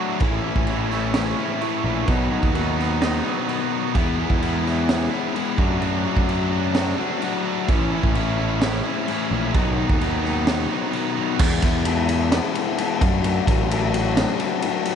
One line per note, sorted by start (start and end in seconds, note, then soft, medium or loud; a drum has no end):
0.00 0.20 F#3 medium
0.00 0.21 F#3 medium
0.00 0.19 A3 medium
0.00 0.21 A3 medium
0.00 0.19 D4 medium
0.00 0.21 D4 medium
0.00 0.18 F#4 medium
0.00 0.21 F#4 loud
0.20 0.50 A1 loud
0.20 0.68 A2 medium
0.20 0.66 E3 medium
0.20 0.46 A3 medium
0.20 0.44 C#4 medium
0.20 0.43 E4 medium
0.20 kick loud
0.20 crash medium
0.44 0.65 E3 medium
0.44 0.67 A3 medium
0.44 0.68 C#4 medium
0.44 0.69 E4 medium
0.55 1.33 A1 medium
0.55 kick medium
0.67 1.15 E3 medium
0.67 0.91 A3 medium
0.67 0.91 C#4 medium
0.67 0.89 E4 medium
0.67 crash medium
0.90 1.38 A2 medium
0.90 1.12 E3 medium
0.90 1.39 A3 medium
0.90 1.39 C#4 medium
0.90 1.37 E4 medium
0.90 snare soft
1.13 1.38 E3 medium
1.13 1.37 A3 medium
1.13 1.36 C#4 medium
1.13 1.35 E4 medium
1.13 snare loud
1.13 crash medium
1.38 1.85 A2 medium
1.38 1.59 E3 medium
1.38 1.62 A3 medium
1.38 1.62 C#4 medium
1.38 1.63 E4 medium
1.61 2.06 A2 medium
1.61 2.07 E3 loud
1.61 2.07 A3 loud
1.61 2.08 C#4 loud
1.61 2.08 E4 loud
1.61 crash medium
1.83 2.04 A#1 medium
1.83 2.08 E3 medium
1.83 2.07 A3 medium
1.83 2.06 C#4 medium
1.83 2.06 E4 medium
2.07 2.37 B1 loud
2.07 2.54 B2 medium
2.07 2.52 D#3 medium
2.07 2.31 F#3 medium
2.07 2.31 B3 medium
2.07 2.28 D#4 loud
2.07 kick loud
2.07 crash medium
2.30 2.53 F#3 medium
2.30 2.54 B3 medium
2.30 2.55 D#4 medium
2.43 3.20 D#2 medium
2.43 kick medium
2.53 3.01 D#3 medium
2.53 2.78 F#3 medium
2.53 2.77 B3 medium
2.53 2.75 D#4 medium
2.53 crash medium
2.76 3.26 B2 medium
2.76 3.00 D#3 medium
2.76 3.25 F#3 medium
2.76 3.24 B3 medium
2.76 3.22 D#4 medium
2.76 snare soft
3.01 3.25 D#3 medium
3.01 3.24 F#3 medium
3.01 3.24 B3 medium
3.01 3.23 D#4 medium
3.01 snare loud
3.01 crash medium
3.23 3.46 D#3 medium
3.23 3.48 F#3 medium
3.23 3.48 B3 medium
3.23 3.48 D#4 medium
3.27 3.73 B2 medium
3.47 3.93 B2 medium
3.47 3.93 D#3 medium
3.47 3.94 F#3 loud
3.47 3.94 B3 loud
3.47 3.94 D#4 loud
3.47 crash medium
3.71 3.95 F#3 medium
3.71 3.94 B3 medium
3.71 3.93 D#4 medium
3.93 4.24 E2 loud
3.93 4.39 E3 medium
3.93 4.19 G#3 medium
3.93 4.18 B3 medium
3.93 4.17 E4 loud
3.93 kick loud
3.93 crash medium
4.17 4.40 G#3 medium
4.17 4.41 B3 medium
4.17 4.42 E4 medium
4.30 5.07 E2 medium
4.30 kick medium
4.40 5.33 E3 medium
4.40 4.66 G#3 medium
4.40 4.64 B3 medium
4.40 4.63 E4 medium
4.40 crash medium
4.64 5.12 G#3 medium
4.64 5.11 B3 medium
4.64 5.10 E4 medium
4.64 snare soft
4.68 4.87 E3 medium
4.88 5.13 E3 medium
4.88 5.12 G#3 medium
4.88 5.10 B3 medium
4.88 5.10 E4 medium
4.88 snare loud
4.88 crash medium
5.11 5.33 E3 medium
5.11 5.34 G#3 medium
5.11 5.35 B3 medium
5.11 5.36 E4 medium
5.34 5.60 E3 medium
5.34 5.57 G#3 medium
5.34 5.57 B3 loud
5.34 5.57 E4 loud
5.34 crash medium
5.58 6.06 F#2 medium
5.58 5.79 F#3 medium
5.58 5.81 A3 medium
5.58 5.81 D4 medium
5.58 5.83 F#4 loud
5.58 kick loud
5.81 6.26 F#3 medium
5.81 6.08 A3 medium
5.81 6.06 D4 medium
5.81 6.04 F#4 medium
5.81 crash soft
6.05 6.28 A3 medium
6.05 6.28 D4 medium
6.05 6.29 F#4 medium
6.16 6.93 F#2 medium
6.16 kick medium
6.28 6.75 F#3 medium
6.28 6.53 A3 medium
6.28 6.51 D4 medium
6.28 6.49 F#4 medium
6.28 crash medium
6.50 6.73 F#3 medium
6.50 7.00 A3 medium
6.50 6.99 D4 medium
6.50 6.97 F#4 medium
6.74 6.97 F#3 medium
6.74 6.97 A3 medium
6.74 6.96 D4 medium
6.74 6.95 F#4 medium
6.74 snare loud
6.74 crash medium
6.98 7.20 F#3 medium
6.98 7.21 A3 medium
6.98 7.22 D4 medium
6.98 7.22 F#4 medium
7.21 7.67 F#3 medium
7.21 7.67 A3 medium
7.21 7.67 D4 loud
7.21 7.68 F#4 loud
7.21 crash medium
7.44 7.68 A3 medium
7.44 7.67 D4 medium
7.44 7.66 F#4 medium
7.69 7.97 A1 loud
7.69 8.15 A2 medium
7.69 8.13 E3 medium
7.69 7.92 A3 medium
7.69 7.91 C#4 loud
7.69 7.90 E4 loud
7.69 kick loud
7.69 crash medium
7.91 8.15 A3 medium
7.91 8.15 C#4 medium
7.91 8.16 E4 medium
8.03 8.80 A1 loud
8.03 kick medium
8.15 8.61 E3 medium
8.15 8.39 A3 medium
8.15 8.38 C#4 medium
8.15 8.36 E4 medium
8.15 crash medium
8.37 8.85 A2 medium
8.37 8.59 E3 medium
8.37 8.86 A3 medium
8.37 8.85 C#4 medium
8.37 8.82 E4 medium
8.60 8.85 E3 medium
8.60 8.84 A3 medium
8.60 8.84 C#4 medium
8.60 8.83 E4 medium
8.60 snare loud
8.60 crash medium
8.84 9.32 A2 medium
8.84 9.05 E3 medium
8.84 9.08 A3 medium
8.84 9.09 C#4 medium
8.84 9.09 E4 medium
9.07 9.53 A2 medium
9.07 9.53 E3 medium
9.07 9.54 A3 medium
9.07 9.54 C#4 loud
9.07 9.54 E4 loud
9.07 crash medium
9.30 9.50 A#1 medium
9.30 9.53 A3 medium
9.30 9.53 C#4 medium
9.30 9.52 E4 medium
9.54 9.83 B1 loud
9.54 10.01 B2 loud
9.54 10.00 D#3 medium
9.54 9.79 F#3 medium
9.54 9.78 B3 loud
9.54 9.77 D#4 loud
9.54 kick loud
9.54 crash medium
9.78 10.01 F#3 medium
9.78 10.02 B3 medium
9.78 10.03 D#4 medium
9.89 10.66 D#2 medium
9.89 kick medium
10.01 10.47 D#3 medium
10.01 10.26 F#3 medium
10.01 10.25 B3 medium
10.01 10.24 D#4 medium
10.01 crash medium
10.22 10.70 B2 medium
10.22 10.44 D#3 medium
10.22 10.45 F#3 medium
10.22 10.46 B3 medium
10.22 10.70 D#4 medium
10.22 snare soft
10.26 10.72 F#3 medium
10.26 10.71 B3 medium
10.45 10.70 D#3 medium
10.45 10.69 F#3 medium
10.45 10.68 B3 medium
10.45 10.67 D#4 medium
10.45 snare loud
10.45 crash medium
10.71 11.17 B2 medium
10.71 10.92 D#3 medium
10.71 10.94 F#3 medium
10.71 10.94 B3 medium
10.71 10.95 D#4 medium
10.93 11.38 B2 loud
10.93 11.38 D#3 loud
10.93 11.39 F#3 loud
10.93 11.39 B3 loud
10.93 11.40 D#4 loud
10.93 crash medium
11.15 11.39 F#3 medium
11.15 11.39 B3 medium
11.15 11.38 D#4 medium
11.38 11.59 E2 loud
11.38 11.86 E3 loud
11.38 11.64 G#3 loud
11.38 11.64 B3 loud
11.38 11.63 E4 loud
11.38 kick loud
11.38 crash loud
11.62 12.39 E2 loud
11.62 11.86 G#3 medium
11.62 11.86 B3 medium
11.62 11.88 E4 medium
11.62 kick loud
11.62 ride medium
11.85 12.31 E3 loud
11.85 12.11 G#3 loud
11.85 12.09 B3 loud
11.85 12.09 E4 loud
11.85 ride loud
12.09 12.31 G#3 medium
12.09 12.31 B3 medium
12.09 12.33 E4 medium
12.09 ride medium
12.31 12.57 E3 medium
12.31 12.56 G#3 medium
12.31 12.55 B3 medium
12.31 12.55 E4 medium
12.31 snare loud
12.31 ride loud
12.55 12.76 E3 medium
12.55 12.77 G#3 medium
12.55 12.77 B3 medium
12.55 12.79 E4 loud
12.55 ride medium
12.77 13.03 E3 medium
12.77 13.00 G#3 medium
12.77 13.00 B3 medium
12.77 13.00 E4 loud
12.77 ride loud
13.00 13.40 F#2 medium
13.00 13.22 F#3 medium
13.00 13.24 A3 medium
13.00 13.24 D4 medium
13.00 13.25 F#4 loud
13.00 kick loud
13.00 ride medium
13.23 13.68 F#3 medium
13.23 13.49 A3 medium
13.23 13.47 D4 loud
13.23 13.46 F#4 loud
13.23 ride loud
13.47 14.24 A1 medium
13.47 13.70 A3 medium
13.47 13.70 D4 medium
13.47 13.71 F#4 medium
13.47 kick loud
13.47 ride medium
13.69 14.15 F#3 loud
13.69 13.95 A3 loud
13.69 13.93 D4 loud
13.69 13.91 F#4 loud
13.69 ride loud
13.92 14.15 A3 medium
13.92 14.16 D4 medium
13.92 14.17 F#4 medium
13.92 ride medium
14.16 14.40 F#3 medium
14.16 14.39 A3 medium
14.16 14.38 D4 medium
14.16 14.37 F#4 medium
14.16 snare loud
14.16 ride loud
14.38 14.61 F#3 medium
14.38 14.62 A3 medium
14.38 14.63 D4 medium
14.38 14.64 F#4 loud
14.38 ride medium
14.62 14.95 F#3 medium
14.62 14.87 A3 medium
14.62 14.85 D4 medium
14.62 14.84 F#4 medium
14.62 ride loud
14.85 14.95 A3 medium
14.85 14.95 D4 medium
14.85 14.95 F#4 medium
14.85 snare soft
14.85 ride medium